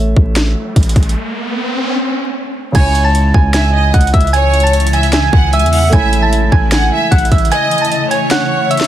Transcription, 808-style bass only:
Already playing: A1
0.17 A1
0.76 A1
0.96 A1
2.75 C#2
3.34 C#2
3.94 C#2
4.14 C#2
5.33 C#2
5.63 E2
5.93 A1
6.52 A1
7.12 A1
7.32 A1

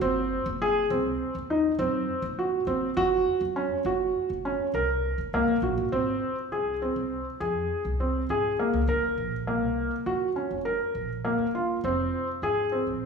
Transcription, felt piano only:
0.02 C4
0.62 G#4
0.91 C4
1.50 D#4
1.79 C4
2.39 F#4
2.67 C4
2.97 F#4
3.56 C#4
3.86 F#4
4.45 C#4
4.75 A#4
5.34 A#3
5.63 F#4
5.92 C4
6.52 G#4
6.82 C4
7.40 G#4
8.00 C4
8.30 G#4
8.59 A#3
8.89 A#4
9.47 A#3
10.06 F#4
10.36 C#4
10.65 A#4
11.25 A#3
11.55 F4
11.84 C4
12.43 G#4
12.72 C4

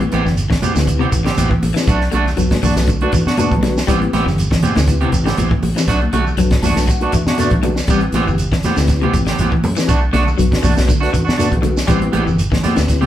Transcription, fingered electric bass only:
0.13 A1
0.26 G1
0.76 D2
1.12 A1
1.38 A1
1.63 A1
1.87 B1
2.14 B1
2.38 B1
2.63 B1
2.76 B1
3.27 B2
3.52 B1
3.88 A1
4.13 A1
4.26 G1
4.76 D2
5.13 A1
5.38 A1
5.63 A1
5.88 B1
6.13 B1
6.37 B1
6.62 B1
6.76 B1
7.14 muted fingered electric bass stroke
7.26 B2
7.51 B1
7.88 A1
8.13 A1
8.26 G1
8.77 D2
9.14 A1
9.39 A1
9.64 F#2
9.89 B1
10.14 B1
10.39 B1
10.64 B1
10.78 B1
11.29 B2
11.52 B1
11.88 A1
12.14 A1
12.27 G1
12.77 D2

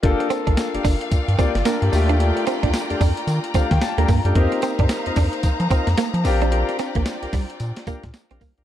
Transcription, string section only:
0.03 F4 D5 F5 G5
1.93 A#5
4.35 D#4 C5 F5 A#5
6.25 F4 D5 G5

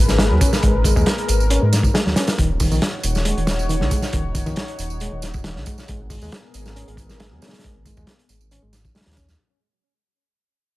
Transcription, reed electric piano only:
0.19 G#3
0.31 F#3
0.41 C#4
0.63 G#3
0.84 G#3
0.96 G#3
1.50 C#4
1.62 G#3
1.94 G#3
2.06 F#3
2.16 C#4
2.38 D#3
2.60 D#3
2.71 D#3
3.25 G#3
3.37 D#3
3.69 D#3
3.80 C#3
3.91 G#3
4.13 D#3
4.35 D#3
4.46 D#3
5.01 G#3
5.12 D#3
5.45 D#3
5.56 C#3
5.67 G#3
5.89 G#3
6.10 G#3
6.22 G#3
6.76 C#4
6.88 G#3
7.20 G#3
7.32 F#3
7.42 C#4
7.64 G#3
7.86 G#3
7.97 G#3
8.52 C#4
8.62 G#3
8.95 G#3
9.06 F#3
9.17 C#4

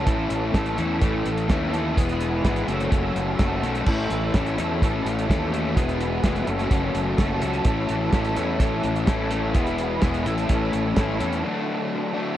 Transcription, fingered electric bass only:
0.07 A1
0.31 A1
0.54 A1
0.79 E2
1.02 A1
1.26 A1
1.50 D#2
1.97 E1
2.45 G#1
2.68 F#1
2.92 F#1
3.16 F#1
3.39 F#1
3.63 B1
3.87 A1
4.11 A1
4.34 A1
4.59 E2
4.82 A1
5.05 A1
5.30 D#2
5.77 E1
6.24 F1
6.47 F#1
6.71 F#1
6.95 F#1
7.19 F#1
7.42 C#2
7.65 A1
7.90 A1
8.13 A1
8.37 E2
8.60 A1
8.84 A1
9.08 A1
9.55 E1
10.02 E1
10.26 A1
10.50 A1
10.74 A1
10.97 A1
11.20 E2

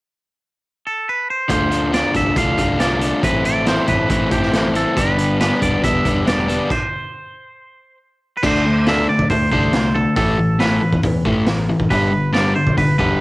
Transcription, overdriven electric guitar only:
1.49 D3 A3 D4 F4
1.70 A3 D4 F4
1.92 D3 A3 D4 F4
2.14 A3 D4 F4
2.36 D3 A3 D4 F4
2.57 D3 A3 D4 F4
2.79 D3 A3 D4 F4
3.00 A3 D4 F4
3.22 A2 E3 A3 C4 E4
3.44 A3 C4 E4
3.66 A2 E3 A3 C4 E4
3.88 A3 C4 E4
4.09 E3 A3 C4 E4
4.31 A2 E3 A3 C4 E4
4.53 E3 A3 C4 E4
4.75 A3 C4 E4
4.96 G2 D3 G3 B3 D4
5.18 G3 B3 D4
5.40 G2 D3 G3 B3 D4
5.61 G3 B3 D4
5.83 D3 G3 B3 D4
6.05 G2 D3 G3 B3 D4
6.26 D3 G3 B3 D4
6.48 G3 B3 D4
8.43 D3 A3 D4
8.65 D3 A3
8.87 D3 A3 D4
9.09 D3 A3
9.31 D3 A3
9.52 D3 A3 D4
9.74 D3 A3
9.95 D3 A3
10.17 A2 E3 A3
10.38 A2 E3
10.59 A2 E3 A3
10.81 A2 E3
11.03 A2 E3
11.25 A2 E3 A3
11.47 A2 E3
11.69 A2 E3
11.90 G2 D3 G3
12.12 G2 D3
12.33 G2 D3 G3
12.55 G2 D3
12.77 G2 D3
12.99 G2 D3 G3

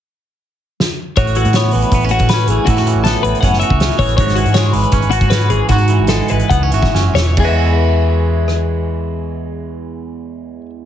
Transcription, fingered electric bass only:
1.17 A1
1.45 A2
1.74 A1
1.92 A1
2.20 A2
2.48 A1
2.67 A2
2.95 A1
3.24 A1
3.43 F#1
3.70 C#2
3.99 A1
4.18 G#1
4.45 G#2
4.73 G#1
4.92 G#1
5.22 G#2
5.49 G#1
5.69 G#2
5.99 G#1
6.31 G#1
6.51 C#2
6.72 G#1
6.93 F#1
7.13 E1
7.37 E2

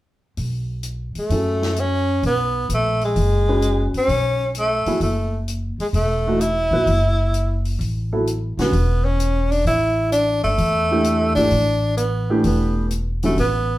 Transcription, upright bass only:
0.37 B1
1.15 muted upright bass stroke
1.30 F#2
2.23 B1
2.69 A#1
3.16 F#1
3.93 muted upright bass stroke
4.08 B1
4.85 muted upright bass stroke
5.00 F#1
5.78 muted upright bass stroke
5.93 E1
6.71 A#1
6.86 F#1
7.79 A1
8.57 A#1
8.72 E1
9.65 A1
10.44 G1
10.58 E2
11.36 G#1
11.51 A1
12.44 E1
13.37 A1

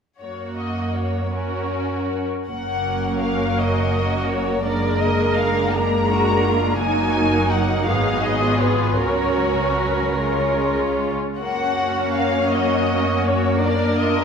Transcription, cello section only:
0.22 F#2
3.58 F#4
4.65 A#4
5.77 D4
6.12 F#4
6.47 F4
6.81 D#4
7.87 G#4
9.02 A#4
11.38 F#4
12.52 F#4
13.61 A#4

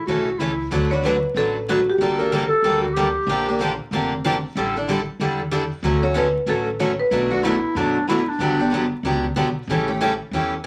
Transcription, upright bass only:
0.07 B1
0.39 C#2
0.71 D2
1.34 A1
1.98 G1
2.62 D2
3.27 A#1
3.91 F1
4.55 A1
5.20 E2
5.83 D2
6.46 A1
7.11 B1
7.75 F#2
8.39 G1
9.03 C#2
9.36 B1
9.67 A1
10.31 E2

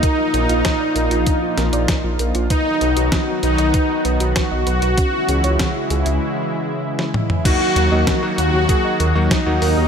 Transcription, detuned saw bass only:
0.34 A#1
0.50 A#1
0.96 A#1
1.11 A#1
1.58 A#1
1.73 A#1
2.04 A#1
2.19 A#1
2.35 A#1
2.81 B1
2.97 B1
3.43 B1
3.59 B1
4.05 B1
4.20 B1
4.51 B1
4.67 B1
4.82 B1
5.29 C#2
5.44 C#2
5.90 C#2
6.06 C#2
7.76 D#2
7.92 D#2
8.38 D#2
8.54 D#2
9.00 D#2
9.15 D#2
9.46 D#2
9.62 D#2
9.78 D#2

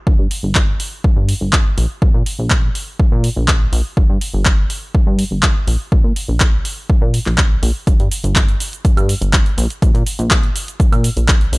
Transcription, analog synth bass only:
0.07 G1
0.19 G2
0.43 G1
1.16 G2
1.41 G1
1.78 A#1
2.02 A#1
2.14 A#2
2.39 A#1
3.12 A#2
3.36 A#1
3.72 A#1
3.97 G1
4.10 G2
4.34 G1
5.07 G2
5.31 G1
5.67 A#1
5.92 A#1
6.04 A#2
6.28 A#1
7.02 A#2
7.26 A#1
7.63 A#1
7.87 G1
8.00 G2
8.24 G1
8.85 G2
8.97 G2
9.21 G1
9.58 A#1
9.82 A#1
9.95 A#2
10.19 A#1
10.92 A#2
11.17 A#1
11.53 A#1

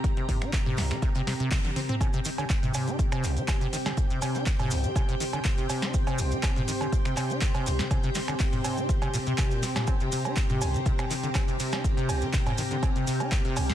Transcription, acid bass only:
0.17 C3
0.29 C3
0.42 D#4
0.66 C3
0.78 C2
0.91 F3
1.02 C3
1.15 C3
1.27 C3
1.40 C3
1.52 C3
1.65 D3
1.76 C4
1.89 C4
2.01 C3
2.14 C3
2.25 D#3
2.38 D3
2.63 C3
2.75 C3
2.87 D#4
3.12 C3
3.24 C2
3.36 F3
3.48 C3
3.61 C3
3.73 D#3
3.86 D3
4.10 C3
4.22 C3
4.35 D#4
4.60 C3
4.71 C2
4.84 F3
4.96 C3
5.09 C3
5.20 D#3
5.33 D3
5.58 C3
5.70 C3
5.83 D#4
6.07 C3
6.19 C2
6.32 F3
6.44 C3
6.56 C3
6.68 D#3
6.81 D3
7.05 C3
7.17 C3
7.30 D#4
7.55 C3
7.66 C2
7.79 F3
7.91 C3
8.04 C3
8.16 D#3
8.28 D3
8.53 C3
8.65 C3
8.78 D#4
9.02 C3
9.14 A#2
9.27 C3
9.38 C3
9.51 A#2
9.63 C3
9.76 A#2
9.88 C4
10.01 C3
10.12 C3
10.25 D#4
10.50 C3
10.62 C2
10.74 F3
10.86 C3
10.99 C3
11.10 D#3
11.23 D3
11.35 C4
11.48 C3
11.60 C3
11.73 D#4
11.97 C3
12.09 C2
12.22 F3
12.34 C3
12.46 C3
12.58 D#3
12.71 D3
12.83 C4
12.96 C3
13.07 C3
13.20 D#4
13.45 C3
13.57 C2
13.70 F3

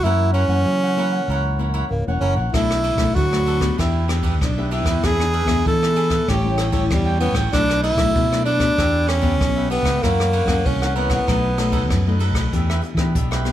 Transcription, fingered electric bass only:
0.03 F#2
0.48 F#2
0.65 F#3
1.28 C#2
1.91 C#1
2.08 E1
2.21 F#1
2.35 A#1
2.54 B1
2.96 B1
3.16 D2
3.79 E2
4.42 B1
4.83 E2
5.04 E2
5.45 E2
5.66 E3
6.28 A1
6.91 E2
7.32 A1
7.53 B1
7.95 B1
8.16 B2
8.78 E2
9.41 B1
9.83 C#2
10.03 F#2
10.45 F#2
10.66 C2
11.28 B1
11.90 F#2
12.32 B1
12.53 E2
12.95 E3
13.15 B1

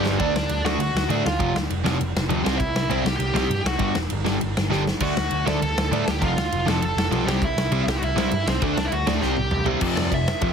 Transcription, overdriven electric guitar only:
Already playing: G2 D3 G3
0.19 D3 A3 D4
0.65 D3 A3 D4
1.09 D3 A3 D4
1.39 F2 C3 F3
1.85 F2 C3 F3
2.29 F2 C3 F3
2.44 C3 G3 C4
2.90 C3 G3 C4
3.34 C3 G3 C4
3.79 G2 D3 G3
4.25 G2 D3 G3
4.70 G2 D3 G3
5.01 D3 A3 D4
5.46 D3 A3 D4
5.92 D3 A3 D4
6.22 F2 C3 F3
6.66 F2 C3 F3
7.12 F2 C3 F3
7.27 C3 G3 C4
7.72 C3 G3 C4
8.16 C3 G3 C4
8.62 D3 A3 D4
9.07 D3 A3 D4
9.22 C3 G3 C4
9.66 C3 G3 C4
9.81 F2 C3 F3
10.12 F2 C3
10.41 F2 C3 F3

